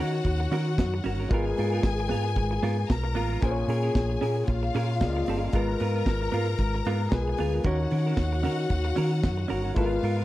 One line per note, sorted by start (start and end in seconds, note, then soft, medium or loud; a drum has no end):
0.00 0.19 D#3 medium
0.00 1.26 D#3 medium
0.00 0.16 C#4 medium
0.00 1.27 D#4 medium
0.00 0.13 F#4 medium
0.00 1.27 F#4 medium
0.00 0.12 A#4 medium
0.00 1.28 C#5 medium
0.00 1.27 F#5 medium
0.14 muted clean electric guitar stroke soft
0.25 0.46 D#2 medium
0.25 muted clean electric guitar stroke soft
0.25 kick medium
0.25 closed hi-hat soft
0.40 muted clean electric guitar stroke soft
0.51 0.80 D#3 medium
0.51 0.69 C#4 medium
0.51 0.67 F#4 loud
0.51 0.66 A#4 loud
0.51 open hi-hat medium
0.67 muted clean electric guitar stroke medium
0.78 0.99 F#2 loud
0.78 muted clean electric guitar stroke soft
0.78 kick loud
0.78 snare loud
0.78 closed hi-hat medium
0.94 muted clean electric guitar stroke medium
1.04 1.25 G1 medium
1.04 1.21 C#4 medium
1.04 1.20 F#4 medium
1.04 1.18 A#4 loud
1.04 open hi-hat medium
1.20 1.31 C#4 soft
1.20 1.31 F#4 medium
1.20 1.30 A#4 medium
1.29 1.52 G#1 medium
1.29 3.37 G#3 medium
1.29 1.48 B3 medium
1.29 3.38 F4 medium
1.29 2.86 G#4 medium
1.29 3.38 A#4 medium
1.29 3.39 B4 medium
1.29 2.86 G#5 loud
1.29 kick loud
1.29 closed hi-hat medium
1.33 1.46 F4 medium
1.33 1.45 A#4 loud
1.46 muted clean electric guitar stroke soft
1.57 1.79 G#2 medium
1.57 1.71 B3 medium
1.57 1.72 F4 medium
1.57 1.71 A#4 medium
1.57 open hi-hat medium
1.72 1.84 B3 soft
1.72 1.84 F4 medium
1.72 1.83 A#4 medium
1.83 2.12 G#1 loud
1.83 kick loud
1.83 snare loud
1.83 closed hi-hat medium
2.00 muted clean electric guitar stroke soft
2.09 2.38 G#2 medium
2.09 2.27 B3 medium
2.09 2.25 F4 medium
2.09 2.24 A#4 medium
2.09 open hi-hat medium
2.25 muted clean electric guitar stroke soft
2.36 2.57 G#1 medium
2.36 muted clean electric guitar stroke medium
2.36 kick medium
2.36 closed hi-hat medium
2.51 muted clean electric guitar stroke soft
2.62 2.83 G#2 loud
2.62 2.80 B3 medium
2.62 2.77 F4 loud
2.62 2.76 A#4 medium
2.62 open hi-hat medium
2.77 muted clean electric guitar stroke soft
2.89 3.15 B1 loud
2.89 3.41 A#4 medium
2.89 3.41 A#5 medium
2.89 muted clean electric guitar stroke medium
2.89 kick loud
2.89 snare loud
2.89 closed hi-hat medium
3.04 muted clean electric guitar stroke medium
3.15 3.36 A1 medium
3.15 3.30 B3 medium
3.15 3.30 F4 medium
3.15 3.29 A#4 medium
3.15 open hi-hat medium
3.30 3.41 B3 soft
3.30 3.41 F4 medium
3.30 3.41 A#4 medium
3.42 3.63 A#1 medium
3.42 4.98 A#3 medium
3.42 3.59 C#4 medium
3.42 4.98 F4 medium
3.42 3.56 G#4 medium
3.42 4.46 G#4 medium
3.42 4.99 G#4 medium
3.42 3.55 A#4 medium
3.42 3.51 C5 medium
3.42 4.46 G#5 medium
3.42 kick loud
3.42 closed hi-hat medium
3.51 5.02 C#5 medium
3.56 muted clean electric guitar stroke soft
3.68 3.89 A#2 loud
3.68 3.82 C#4 medium
3.68 3.83 G#4 medium
3.68 3.82 A#4 medium
3.68 open hi-hat medium
3.83 3.95 C#4 medium
3.83 3.94 G#4 medium
3.83 3.94 A#4 medium
3.95 4.16 A#1 loud
3.95 kick loud
3.95 snare loud
3.95 closed hi-hat medium
4.10 muted clean electric guitar stroke soft
4.21 4.42 A#2 medium
4.21 4.38 C#4 medium
4.21 4.36 G#4 medium
4.21 4.35 A#4 medium
4.21 open hi-hat medium
4.37 muted clean electric guitar stroke medium
4.47 4.69 A#1 loud
4.47 5.51 F4 medium
4.47 5.51 F5 medium
4.47 muted clean electric guitar stroke soft
4.47 kick medium
4.47 closed hi-hat medium
4.63 muted clean electric guitar stroke soft
4.74 5.03 A#2 loud
4.74 4.91 C#4 medium
4.74 4.90 G#4 medium
4.74 4.89 A#4 medium
4.74 open hi-hat medium
4.90 muted clean electric guitar stroke soft
5.01 5.22 C#2 medium
5.01 5.54 A#3 soft
5.01 5.52 F4 soft
5.01 5.55 G#4 soft
5.01 5.09 D5 soft
5.01 muted clean electric guitar stroke soft
5.01 kick medium
5.01 snare loud
5.01 closed hi-hat medium
5.09 5.58 D#5 medium
5.17 muted clean electric guitar stroke soft
5.26 5.48 G1 medium
5.26 5.44 C#4 medium
5.26 5.43 G#4 medium
5.26 open hi-hat medium
5.30 5.43 A#4 medium
5.44 5.54 C#4 soft
5.44 5.54 G#4 medium
5.44 5.54 A#4 medium
5.53 5.74 G#1 medium
5.53 7.09 G#3 medium
5.53 5.71 B3 medium
5.53 7.09 F4 medium
5.53 5.69 F4 medium
5.53 7.08 A#4 medium
5.53 7.09 A#4 medium
5.53 5.68 A#4 medium
5.53 7.10 B4 medium
5.53 7.09 A#5 medium
5.53 kick loud
5.53 closed hi-hat medium
5.69 muted clean electric guitar stroke soft
5.79 6.01 G#2 loud
5.79 5.94 B3 medium
5.79 5.94 F4 medium
5.79 5.93 A#4 medium
5.79 open hi-hat medium
5.94 6.06 B3 soft
5.94 6.06 F4 soft
5.94 6.05 A#4 medium
6.06 6.27 G#1 loud
6.06 kick medium
6.06 snare loud
6.06 closed hi-hat medium
6.21 muted clean electric guitar stroke soft
6.32 6.54 G#2 medium
6.32 6.49 B3 medium
6.32 6.47 F4 loud
6.32 6.47 A#4 medium
6.32 open hi-hat medium
6.48 muted clean electric guitar stroke soft
6.58 6.80 G#1 loud
6.58 muted clean electric guitar stroke soft
6.58 kick medium
6.58 closed hi-hat medium
6.74 muted clean electric guitar stroke soft
6.85 7.07 G#2 medium
6.85 7.03 B3 medium
6.85 7.02 F4 loud
6.85 7.00 A#4 loud
6.85 open hi-hat medium
7.01 muted clean electric guitar stroke soft
7.11 7.33 B1 loud
7.11 7.64 G#3 soft
7.11 7.64 F4 soft
7.11 7.64 G#4 medium
7.11 7.65 A#4 soft
7.11 7.65 B4 medium
7.11 7.64 G#5 medium
7.11 muted clean electric guitar stroke soft
7.11 kick loud
7.11 snare loud
7.11 closed hi-hat medium
7.28 muted clean electric guitar stroke soft
7.37 7.59 D2 medium
7.37 7.54 B3 medium
7.37 7.53 F4 medium
7.37 7.53 A#4 loud
7.37 open hi-hat medium
7.54 7.65 B3 medium
7.54 7.65 F4 medium
7.54 7.64 A#4 medium
7.64 7.85 D#2 medium
7.64 9.72 D#3 medium
7.64 7.82 C#4 medium
7.64 9.72 D#4 medium
7.64 9.72 F#4 medium
7.64 7.79 F#4 loud
7.64 9.73 F#4 medium
7.64 7.78 A#4 loud
7.64 9.73 C#5 medium
7.64 9.72 F#5 medium
7.64 kick loud
7.64 closed hi-hat medium
7.79 muted clean electric guitar stroke soft
7.91 8.12 D#3 medium
7.91 8.05 C#4 medium
7.91 8.05 F#4 medium
7.91 8.05 A#4 medium
7.91 open hi-hat medium
8.06 8.18 C#4 medium
8.06 8.17 F#4 medium
8.06 8.17 A#4 medium
8.17 8.46 D#2 medium
8.17 kick loud
8.17 snare medium
8.17 closed hi-hat medium
8.33 muted clean electric guitar stroke soft
8.43 8.65 D#3 medium
8.43 8.61 C#4 loud
8.43 8.58 F#4 medium
8.43 8.57 A#4 loud
8.43 open hi-hat medium
8.58 muted clean electric guitar stroke soft
8.70 8.91 D#2 medium
8.70 muted clean electric guitar stroke medium
8.70 kick medium
8.70 closed hi-hat medium
8.85 muted clean electric guitar stroke medium
8.96 9.25 D#3 medium
8.96 9.13 C#4 loud
8.96 9.11 F#4 medium
8.96 9.10 A#4 loud
8.96 open hi-hat medium
9.11 muted clean electric guitar stroke soft
9.23 9.44 F#2 loud
9.23 muted clean electric guitar stroke soft
9.23 kick loud
9.23 snare loud
9.23 closed hi-hat medium
9.37 muted clean electric guitar stroke soft
9.48 9.71 G1 medium
9.48 9.63 C#4 medium
9.48 9.63 F#4 medium
9.48 9.62 A#4 loud
9.48 open hi-hat medium
9.63 9.75 C#4 soft
9.63 9.75 F#4 medium
9.63 9.75 A#4 medium
9.74 9.97 G#1 medium
9.74 10.25 G#3 medium
9.74 9.97 B3 medium
9.74 10.25 F4 medium
9.74 9.91 F4 medium
9.74 10.25 A#4 medium
9.74 9.90 A#4 loud
9.74 10.25 B4 medium
9.74 10.25 F5 medium
9.74 kick loud
9.74 closed hi-hat medium
9.91 muted clean electric guitar stroke soft
10.03 10.23 G#2 loud
10.03 10.17 B3 medium
10.03 10.17 F4 medium
10.03 10.16 A#4 medium
10.03 open hi-hat medium
10.17 10.25 B3 soft
10.17 10.25 F4 medium
10.17 10.25 A#4 medium